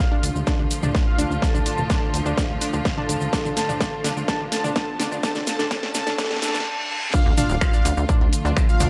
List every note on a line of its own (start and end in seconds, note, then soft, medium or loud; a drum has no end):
0.00 6.62 D3 medium
0.00 6.62 F3 medium
0.00 6.62 A3 medium
0.00 1.08 C4 medium
0.00 6.66 D4 medium
0.00 0.25 F4 medium
0.00 6.62 F4 medium
0.00 0.30 G4 medium
0.00 6.66 A4 medium
0.00 0.63 D5 medium
0.00 0.25 F5 loud
0.00 riser medium
0.11 0.17 D4 loud
0.23 0.31 D2 medium
0.23 0.27 D4 medium
0.23 open hi-hat medium
0.23 maracas medium
0.27 6.66 F5 medium
0.35 0.43 D2 medium
0.35 maracas soft
0.47 0.53 D4 loud
0.47 kick loud
0.47 snare soft
0.47 maracas soft
0.59 0.66 D2 medium
0.59 0.63 D4 medium
0.71 open hi-hat loud
0.71 maracas medium
0.83 0.90 D2 medium
0.83 0.89 D4 loud
0.83 mid tom medium
0.83 maracas soft
0.95 0.98 D4 medium
0.95 kick loud
0.95 snare medium
0.95 maracas soft
1.07 1.33 F4 medium
1.07 1.33 F5 medium
1.18 1.26 D2 medium
1.18 1.25 D4 loud
1.18 open hi-hat medium
1.18 maracas medium
1.31 1.38 D2 medium
1.31 1.34 D4 medium
1.31 maracas soft
1.42 1.60 A4 medium
1.42 1.60 A5 loud
1.42 kick loud
1.42 snare medium
1.42 maracas soft
1.54 1.62 D2 medium
1.54 1.60 D4 loud
1.54 mid tom medium
1.54 maracas soft
1.66 1.70 D4 medium
1.66 1.83 A4 medium
1.66 1.83 A5 medium
1.66 open hi-hat loud
1.66 maracas medium
1.78 1.86 D1 medium
1.78 mid tom medium
1.78 maracas soft
1.90 1.96 D4 loud
1.90 2.16 A4 medium
1.90 2.16 A5 loud
1.90 kick loud
1.90 snare medium
1.90 maracas medium
2.02 2.06 D4 medium
2.14 2.21 D2 medium
2.14 open hi-hat medium
2.14 maracas medium
2.26 2.33 D2 medium
2.26 2.32 D4 loud
2.26 maracas soft
2.37 2.41 D4 medium
2.37 kick loud
2.37 snare medium
2.37 maracas medium
2.50 2.57 D2 medium
2.61 2.67 D4 loud
2.61 open hi-hat loud
2.61 maracas medium
2.73 2.81 D2 medium
2.73 2.77 D4 medium
2.73 maracas soft
2.85 kick loud
2.85 snare medium
2.85 maracas soft
2.97 3.03 D4 loud
2.97 3.23 A4 medium
2.97 3.23 A5 loud
2.97 mid tom medium
3.09 3.17 D2 medium
3.09 3.13 D4 medium
3.09 open hi-hat medium
3.09 maracas medium
3.21 3.28 D2 medium
3.21 maracas soft
3.33 3.39 D4 medium
3.33 3.50 A4 medium
3.33 3.50 A5 medium
3.33 kick loud
3.33 snare medium
3.33 maracas medium
3.45 3.52 D2 medium
3.45 3.49 D4 medium
3.45 mid tom medium
3.45 maracas soft
3.56 3.74 A4 medium
3.56 3.74 A5 medium
3.56 snare medium
3.56 open hi-hat loud
3.56 maracas medium
3.69 3.76 D1 medium
3.69 3.75 D4 medium
3.69 mid tom medium
3.69 maracas soft
3.80 3.84 D4 medium
3.80 4.06 A4 medium
3.80 4.06 A5 medium
3.80 kick loud
3.80 snare medium
3.80 maracas soft
4.04 4.12 D2 loud
4.04 4.10 D4 medium
4.04 snare medium
4.04 open hi-hat medium
4.04 maracas medium
4.17 4.24 D2 medium
4.17 4.20 D4 medium
4.17 maracas soft
4.28 4.34 D4 loud
4.28 4.45 A4 loud
4.28 4.46 A5 medium
4.28 kick loud
4.28 snare medium
4.28 maracas medium
4.40 4.47 D2 medium
4.40 4.44 D4 medium
4.52 4.69 A4 medium
4.52 4.69 A5 medium
4.52 snare medium
4.52 open hi-hat loud
4.52 maracas medium
4.64 4.71 D2 medium
4.64 4.70 D4 loud
4.64 mid tom medium
4.64 maracas soft
4.76 4.79 D4 medium
4.76 5.02 A4 medium
4.76 5.02 A5 medium
4.76 kick loud
4.76 snare medium
4.76 maracas medium
4.99 5.07 D2 medium
4.99 5.06 D4 loud
4.99 snare medium
4.99 open hi-hat medium
4.99 maracas medium
5.12 5.19 D2 medium
5.12 5.15 D4 medium
5.12 maracas soft
5.23 5.29 D4 medium
5.23 5.40 A4 loud
5.23 5.41 A5 loud
5.23 kick loud
5.23 snare loud
5.23 maracas medium
5.35 5.43 D2 medium
5.35 5.39 D4 medium
5.35 snare medium
5.35 mid tom medium
5.35 maracas soft
5.47 5.64 A4 medium
5.47 5.64 A5 medium
5.47 snare medium
5.47 open hi-hat loud
5.47 maracas loud
5.59 5.66 D1 medium
5.59 5.65 D4 loud
5.59 snare medium
5.59 mid tom medium
5.59 maracas soft
5.71 5.77 D4 loud
5.71 5.88 A4 loud
5.71 5.88 A5 loud
5.71 kick loud
5.71 snare loud
5.71 maracas medium
5.83 5.87 D4 medium
5.83 snare medium
5.94 6.02 D2 medium
5.94 6.12 A4 loud
5.94 6.12 A5 medium
5.94 snare loud
5.94 open hi-hat medium
5.94 maracas loud
6.07 6.14 D2 medium
6.07 6.13 D4 loud
6.07 snare medium
6.07 maracas soft
6.18 6.25 D4 loud
6.18 6.36 A4 loud
6.18 6.36 A5 loud
6.18 kick loud
6.18 snare loud
6.18 reverse cymbal medium
6.18 maracas medium
6.25 snare medium
6.31 6.38 D2 medium
6.31 6.34 D4 medium
6.31 snare medium
6.36 snare medium
6.42 6.48 D4 loud
6.42 6.60 A4 loud
6.42 6.60 A5 loud
6.42 snare loud
6.42 open hi-hat loud
6.42 maracas loud
6.48 snare medium
6.54 6.62 D2 medium
6.54 6.58 D4 medium
6.54 snare medium
6.54 maracas soft
6.60 snare medium
7.13 8.90 D3 medium
7.13 8.90 F3 medium
7.13 8.90 A3 medium
7.13 7.17 D4 medium
7.13 8.90 F4 medium
7.13 7.31 F4 loud
7.13 7.31 F5 loud
7.13 kick loud
7.13 crash loud
7.13 impact medium
7.13 maracas medium
7.26 7.33 D2 medium
7.37 7.44 D4 loud
7.37 7.55 F4 medium
7.37 7.55 F5 medium
7.37 mid tom loud
7.37 open hi-hat loud
7.37 maracas medium
7.49 7.57 D1 medium
7.49 7.53 D4 medium
7.49 maracas soft
7.61 7.87 F4 loud
7.61 7.87 F5 medium
7.61 finger snap loud
7.61 kick loud
7.61 maracas medium
7.73 7.79 D4 loud
7.73 maracas soft
7.85 7.93 D2 medium
7.85 7.89 D4 medium
7.85 open hi-hat medium
7.85 maracas medium
7.97 8.05 D2 medium
7.97 maracas soft
8.09 8.15 D4 loud
8.09 kick loud
8.09 mid tom medium
8.09 maracas medium
8.21 8.28 D2 medium
8.21 8.25 D4 medium
8.33 open hi-hat loud
8.33 maracas medium
8.45 8.52 D2 medium
8.45 8.51 D4 loud
8.45 maracas soft
8.57 8.60 D4 medium
8.57 finger snap loud
8.57 kick loud
8.57 maracas medium
8.69 8.90 F4 medium
8.69 8.90 F5 loud
8.69 maracas soft
8.80 8.88 D2 medium
8.80 8.86 D4 loud
8.80 mid tom loud
8.80 open hi-hat loud
8.80 maracas medium